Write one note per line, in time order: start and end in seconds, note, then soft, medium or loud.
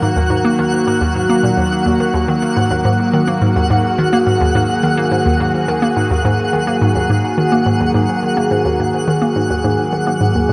0.00 0.09 G#2 medium
0.00 10.53 D#3 medium
0.00 10.53 F#3 medium
0.00 10.53 A#3 medium
0.00 10.53 F#4 medium
0.00 2.86 A#4 medium
0.00 10.53 F#5 medium
0.16 0.26 D#2 medium
0.30 0.40 G#2 medium
0.45 0.51 A#3 medium
0.59 0.65 D#3 medium
0.87 0.94 G#2 medium
1.01 1.11 D#2 medium
1.15 1.25 G#2 medium
1.30 1.36 A#3 medium
1.43 1.50 A#2 medium
1.57 1.64 D#2 medium
1.86 1.90 D#2 medium
2.00 2.10 D#3 medium
2.14 2.24 D#2 medium
2.28 2.35 D#3 medium
2.42 2.49 A#3 medium
2.57 2.63 G#2 medium
2.71 2.81 D#2 medium
2.83 2.95 G#2 medium
2.83 10.53 G#4 medium
3.13 3.20 D#3 medium
3.28 3.34 A#3 medium
3.42 3.48 G#2 medium
3.56 3.66 D#2 medium
3.70 3.80 G#2 medium
3.98 4.05 D#3 medium
4.13 4.19 A#3 medium
4.27 4.33 G#2 medium
4.41 4.51 D#2 medium
4.55 4.65 G#2 medium
4.83 4.90 D#3 medium
4.97 5.04 A#3 medium
5.12 5.18 G#2 medium
5.26 5.36 D#2 medium
5.40 5.50 G#2 medium
5.68 5.75 D#3 medium
5.82 5.89 A#3 medium
5.96 6.03 G#2 medium
6.11 6.20 D#2 medium
6.25 6.35 G#2 medium
6.53 6.60 D#3 medium
6.67 6.74 A#3 medium
6.82 6.88 G#2 medium
6.96 7.05 D#2 medium
7.10 7.20 G#2 medium
7.38 7.44 D#3 medium
7.52 7.59 A#3 medium
7.66 7.73 G#2 medium
7.80 7.90 D#2 medium
7.94 8.04 G#2 medium
8.23 8.29 D#3 medium
8.37 8.44 A#3 medium
8.51 8.58 G#2 medium
8.65 8.75 D#2 medium
8.79 8.89 G#2 medium
9.08 9.14 D#3 medium
9.22 9.28 A#3 medium
9.36 9.43 G#2 medium
9.50 9.60 D#2 medium
9.64 9.74 G#2 medium
9.93 9.99 D#3 medium
10.07 10.13 A#3 medium
10.21 10.28 G#2 medium
10.35 10.45 D#2 medium
10.49 10.53 G#2 medium